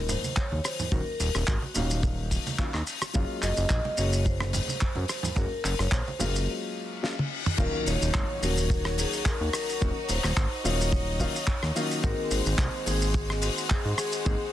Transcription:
Already playing: analog synth bass D#1, grand piano D#3 F#3 A#3 C#4 F#4, vibraphone A#4
0.09 vibraphone C5, open hi-hat, low conga, shaker
0.24 high conga, shaker
0.36 vibraphone C#5, kick, clap, shaker
0.52 analog synth bass D#2, muted conga
0.64 vibraphone C5, cross-stick, open hi-hat, shaker
0.79 low conga, shaker
0.92 analog synth bass D#1, grand piano D#3 F#3 A#3 C#4 F#4, vibraphone A#4, kick, low conga, shaker
1.20 analog synth bass D#1, open hi-hat, shaker
1.35 analog synth bass D#1, cross-stick, shaker
1.47 analog synth bass G#1, vibraphone F#4, kick, clap, shaker
1.62 muted conga
1.74 analog synth bass D#1, grand piano D#3 F#3 A#3 C#4 F5, open hi-hat, low conga, shaker
1.91 shaker
2.03 kick, shaker
2.31 kick, open hi-hat, shaker
2.47 high conga, shaker
2.58 grand piano D#3 F#3 A#3 C#4 F4, kick, clap, shaker
2.74 analog synth bass D#2, cross-stick, clap
2.87 open hi-hat, shaker
3.02 cross-stick, shaker
3.13 analog synth bass F#1, grand piano F#3 G#3 A#3 C#4 F4, kick, shaker
3.42 analog synth bass F#1, vibraphone D#5, clap, open hi-hat, muted conga, shaker
3.57 analog synth bass F#1, shaker
3.70 analog synth bass A#1, kick, clap, shaker
3.85 muted conga
3.97 analog synth bass F#1, grand piano F#3 G#3 A#3 C#4 F#4, vibraphone C#5, open hi-hat, shaker
4.13 shaker
4.25 vibraphone C5, kick, shaker
4.40 cross-stick, muted conga
4.53 open hi-hat, low conga, shaker
4.68 high conga, shaker
4.81 kick, clap, shaker
4.95 analog synth bass F#2, muted conga
5.08 cross-stick, open hi-hat, shaker
5.23 low conga, shaker
5.36 analog synth bass F#1, grand piano F#3 G#3 A#3 C#4 F#4, vibraphone A#4, kick, low conga, shaker
5.64 analog synth bass F#1, clap, open hi-hat, shaker
5.79 analog synth bass F#1, vibraphone C#5, cross-stick, shaker
5.92 analog synth bass A#1, vibraphone C5, kick, clap, shaker
6.08 muted conga
6.19 analog synth bass F#1, grand piano F#3 G#3 A#3 C#4 F4, vibraphone A#4, open hi-hat, low conga, shaker
6.36 shaker
6.48 reverse cymbal
7.03 grand piano F#3 G#3 A#3 C#4 F4, snare
7.19 high tom
7.46 mid tom
7.58 analog synth bass D#1, grand piano D#3 F#3 A#3 C#4 F4, violin section D#4 F#4 C#5, vibraphone A#4, kick, crash, impact, shaker
7.86 analog synth bass D#1, vibraphone C#5, open hi-hat, shaker
8.02 analog synth bass D#1, shaker
8.14 analog synth bass G#1, kick, clap, shaker
8.41 analog synth bass D#1, grand piano D#3 F#3 A#3 C#4 F#4, vibraphone A#4, open hi-hat, shaker
8.57 shaker
8.70 kick, shaker
8.85 cross-stick
8.98 vibraphone G#4, open hi-hat, shaker
9.13 shaker
9.26 vibraphone A#4, kick, clap, shaker
9.41 analog synth bass D#2
9.53 vibraphone A#4, cross-stick, open hi-hat, shaker
9.69 shaker
9.81 analog synth bass D#1, grand piano D#3 F#3 A#3 C#4 F#4, violin section D#5, kick, shaker
10.03 vibraphone C#5
10.09 analog synth bass D#1, vibraphone C5, open hi-hat, shaker
10.24 analog synth bass D#1, cross-stick, clap, shaker
10.37 analog synth bass G#1, kick, clap, shaker
10.64 analog synth bass D#1, grand piano D#3 F#3 A#3 C#4 F4, vibraphone C#5, open hi-hat, shaker
10.81 shaker
10.92 kick, shaker
11.20 grand piano D#3 F#3 A#3 C#4 F4, kick, open hi-hat, shaker
11.36 shaker
11.47 kick, clap, shaker
11.63 analog synth bass D#2, cross-stick
11.75 grand piano D#3 F#3 A#3 C#4 F4, open hi-hat, shaker
11.91 shaker
12.03 analog synth bass G#1, grand piano D#3 G#3 A#3 C4 F#4, violin section G#3 F#4 C5, vibraphone A#4, kick, shaker
12.31 analog synth bass G#1, vibraphone C5, open hi-hat, shaker
12.46 analog synth bass G#1, shaker
12.58 analog synth bass C2, kick, clap, shaker
12.86 analog synth bass G#1, grand piano D#3 G#3 A#3 C4 G#4, vibraphone G#4, open hi-hat, shaker
13.02 shaker
13.14 kick, shaker
13.30 cross-stick
13.42 vibraphone F#4, open hi-hat, shaker
13.58 shaker
13.70 vibraphone G#4, kick, clap, shaker
13.85 analog synth bass G#2
13.98 vibraphone G#4, cross-stick, open hi-hat, shaker
14.12 shaker
14.25 analog synth bass G#1, grand piano D#3 G#3 A#3 C4 G#4, kick, shaker

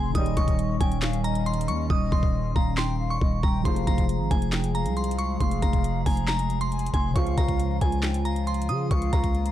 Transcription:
Already playing: 808-style bass F1, analog synth pad F3 C4 G#4, tine electric piano F4 G#4 C5, synth bell G#5, flute C6
0.10 tine electric piano D#3 D#4
0.15 808-style bass D#1, brass ensemble D#2 C#3 G3, analog synth pad D#3 G3 C#4, tine electric piano G3, flute D#5, synth bell D#6, kick, closed hi-hat
0.20 tine electric piano C#5
0.26 closed hi-hat
0.37 808-style bass D#1, synth bell C#6, kick, closed hi-hat
0.48 kick, closed hi-hat
0.59 closed hi-hat
0.81 808-style bass D#1, flute G5, synth bell G#5, kick, closed hi-hat
0.92 closed hi-hat
1.02 flute F5, snare, clap, closed hi-hat
1.13 closed hi-hat
1.24 flute D#5, synth bell A#5, closed hi-hat
1.35 closed hi-hat
1.46 synth bell C6, closed hi-hat
1.54 closed hi-hat
1.61 closed hi-hat
1.68 808-style bass D#2, synth bell C#6, closed hi-hat
1.90 808-style bass D#1, flute D#5, synth bell D#6, kick
2.12 808-style bass D#1, synth bell C6, kick
2.23 kick
2.56 808-style bass D#1, flute F5, synth bell A#5, kick
2.77 flute G5, synth bell C6, snare, clap
3.00 flute F5
3.10 synth bell C#6
3.21 808-style bass D#1, flute D#5, kick
3.43 808-style bass D#1, flute G5, synth bell A#5, kick
3.61 tine electric piano F3 F4
3.65 808-style bass F1, brass ensemble C2 G#2 F3, analog synth pad F3 G#3 G#4, tine electric piano G#4, flute F5, synth bell C6, kick, closed hi-hat
3.70 tine electric piano C5
3.76 closed hi-hat
3.87 808-style bass F1, synth bell A#5, kick, closed hi-hat
3.98 kick, closed hi-hat
4.09 closed hi-hat
4.20 808-style bass G#1
4.31 808-style bass F1, synth bell G#5, flute G#5, kick, closed hi-hat
4.42 closed hi-hat
4.52 flute G5, snare, clap, closed hi-hat
4.64 closed hi-hat
4.75 flute F5, synth bell A#5, closed hi-hat
4.86 808-style bass C2, closed hi-hat
4.97 synth bell C6, closed hi-hat
5.04 closed hi-hat
5.11 closed hi-hat
5.19 synth bell C#6, closed hi-hat
5.40 808-style bass F1, flute F5, synth bell C6, kick, closed hi-hat
5.51 closed hi-hat
5.62 808-style bass F1, synth bell A#5, kick, closed hi-hat
5.73 kick, closed hi-hat
5.84 closed hi-hat
6.06 808-style bass F1, synth bell G#5, flute A#5, kick, open hi-hat
6.17 closed hi-hat
6.28 synth bell A#5, snare, clap, closed hi-hat
6.39 closed hi-hat
6.50 closed hi-hat
6.61 synth bell C6, closed hi-hat
6.72 flute G#5, closed hi-hat
6.79 closed hi-hat
6.86 closed hi-hat
6.94 808-style bass F1, synth bell G#5, flute C6, kick, closed hi-hat
7.11 tine electric piano C#3 C#5
7.15 808-style bass C#2, brass ensemble C#2 C3 F3, analog synth pad F3 F4, tine electric piano F4, flute F5, synth bell C#6, kick, closed hi-hat
7.20 tine electric piano C5
7.27 closed hi-hat
7.38 808-style bass C#2, synth bell A#5, kick, closed hi-hat
7.48 kick, closed hi-hat
7.60 closed hi-hat
7.81 808-style bass C#2, flute G#5, synth bell G#5, kick, closed hi-hat
7.92 closed hi-hat
8.03 flute G5, snare, clap, closed hi-hat
8.14 closed hi-hat
8.25 flute F5, synth bell A#5, closed hi-hat
8.36 closed hi-hat
8.47 synth bell C6, closed hi-hat
8.54 closed hi-hat
8.62 closed hi-hat
8.69 808-style bass C#3, synth bell D#6, closed hi-hat
8.91 808-style bass C#2, analog synth pad A#3, flute F5, synth bell C#6, kick, closed hi-hat
9.02 closed hi-hat
9.13 808-style bass C#2, synth bell A#5, kick, closed hi-hat
9.24 kick, closed hi-hat
9.35 closed hi-hat
9.46 closed hi-hat

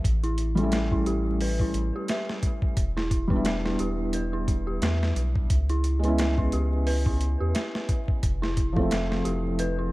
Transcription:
0.04 sub bass A1, kick, closed hi-hat
0.24 synth bell E4, closed hi-hat
0.38 closed hi-hat
0.55 felt piano G3 A3, synth bell E4, closed hi-hat
0.60 felt piano C#4 E4
0.72 synth bell E5, snare, closed hi-hat
0.92 synth bell E4, kick
1.06 sub bass A1, synth bell G4, closed hi-hat
1.41 synth bell B4, open hi-hat
1.60 synth bell E4, kick
1.74 sub bass A1, closed hi-hat
1.96 synth bell G4
2.08 synth bell E5, snare, closed hi-hat
2.29 snare
2.43 kick, closed hi-hat
2.62 kick
2.77 sub bass E1, kick, closed hi-hat
2.97 synth bell E4, snare
3.11 kick, closed hi-hat
3.28 felt piano G3 B3, synth bell E4, kick
3.33 felt piano D4 E4
3.45 synth bell E5, snare, closed hi-hat
3.65 synth bell E4, snare
3.79 sub bass E1, synth bell G4, closed hi-hat
4.13 synth bell B4, closed hi-hat
4.33 synth bell E4
4.48 kick, closed hi-hat
4.67 synth bell G4
4.82 sub bass E2, synth bell E5, snare, closed hi-hat
5.03 snare
5.16 sub bass B1, closed hi-hat
5.36 kick
5.50 sub bass C#2, kick, closed hi-hat
5.69 synth bell E4, closed hi-hat
5.84 closed hi-hat
5.99 felt piano G#3 B3
6.04 felt piano C#4, synth bell E4, closed hi-hat
6.08 felt piano E4
6.18 synth bell E5, snare, closed hi-hat
6.38 synth bell E4, kick
6.52 sub bass C#2, synth bell G4, closed hi-hat
6.87 synth bell B4, open hi-hat
7.06 synth bell E4, kick
7.21 closed hi-hat
7.41 sub bass E2, synth bell G4
7.55 synth bell E5, snare, closed hi-hat
7.75 snare
7.89 kick, closed hi-hat
8.08 kick
8.23 sub bass F1, kick, closed hi-hat
8.42 synth bell E4, snare
8.57 kick, closed hi-hat
8.73 felt piano F3 A3, kick
8.77 felt piano C4, synth bell E4
8.81 felt piano E4
8.91 synth bell E5, snare, closed hi-hat
9.11 synth bell E4, snare
9.25 sub bass F1, synth bell G4, closed hi-hat
9.59 synth bell B4, closed hi-hat
9.79 synth bell E4

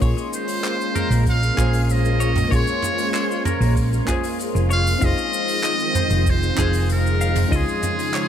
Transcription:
0.00 fingered electric bass A#1, string machine G#3 A#3 C#4 F4, fm electric piano A#3 C#4 F4 G#4, clean electric guitar C#5, kick, open hi-hat, shaker
0.05 fm electric piano C6
0.18 shaker
0.33 muted trumpet C5, shaker
0.48 open hi-hat, shaker
0.64 clean electric guitar C5, clap, open hi-hat, shaker
0.81 shaker
0.95 clean electric guitar A#4, mid tom, shaker
1.10 fingered electric bass A#1, open hi-hat, shaker
1.26 muted trumpet F5, kick, open hi-hat, shaker
1.43 shaker
1.54 fingered electric bass A#1, fm electric piano A#3 C#4 F4, clean electric guitar G#4, kick, clap
1.59 fm electric piano G#4 C5, shaker
1.73 open hi-hat, shaker
1.83 muted trumpet F5
1.89 muted trumpet D#5, open hi-hat, shaker
2.05 shaker
2.20 clean electric guitar C#5, shaker
2.35 mid tom, open hi-hat, shaker
2.49 fingered electric bass A#1, fm electric piano A#3 C#4 F4, clean electric guitar C#5, kick, open hi-hat
2.53 fm electric piano G#4 C6, muted trumpet C#5, shaker
2.67 shaker
2.82 mid tom, shaker
2.98 open hi-hat, shaker
3.14 clean electric guitar C5, clap, open hi-hat, shaker
3.31 shaker
3.45 clean electric guitar A#4, mid tom, shaker
3.60 fingered electric bass A#1, open hi-hat, shaker
3.77 kick, open hi-hat, shaker
3.93 shaker
4.05 fm electric piano A#3 C#4 F4, clean electric guitar G#4, kick, clap, mid tom, shaker
4.10 fm electric piano G#4 C5
4.23 open hi-hat, shaker
4.39 open hi-hat, shaker
4.55 fingered electric bass F1, shaker
4.70 clean electric guitar C#5, muted trumpet F5, shaker
4.87 open hi-hat, shaker
4.99 fingered electric bass F1, string machine D#3 F3 G#3 C4, fm electric piano C4 D#4 F4, clean electric guitar F5, kick, open hi-hat, shaker
5.04 fm electric piano G#4 C5, muted trumpet D#5
5.18 shaker
5.33 shaker
5.48 open hi-hat, shaker
5.64 clean electric guitar D#5, clap, open hi-hat, shaker
5.80 shaker
5.95 clean electric guitar C5, mid tom, shaker
6.10 fingered electric bass F1, open hi-hat, shaker
6.26 muted trumpet C5, kick, open hi-hat, shaker
6.43 shaker
6.55 fingered electric bass F1, fm electric piano C4 D#4 F4, clean electric guitar G#4, kick, clap
6.59 fm electric piano G#4 C5, shaker
6.73 open hi-hat, shaker
6.89 muted trumpet A#4, open hi-hat, shaker
7.07 shaker
7.21 clean electric guitar F5, shaker
7.35 mid tom, open hi-hat, shaker
7.49 fingered electric bass C#2, string machine C#3 D#4, fm electric piano C#4 D#4 F4, clean electric guitar D#5, kick, open hi-hat, shaker
7.54 fm electric piano G#4 C6, muted trumpet G#4
7.68 shaker
7.83 mid tom, shaker
7.99 open hi-hat, shaker
8.14 clean electric guitar C#5, clap, open hi-hat, shaker

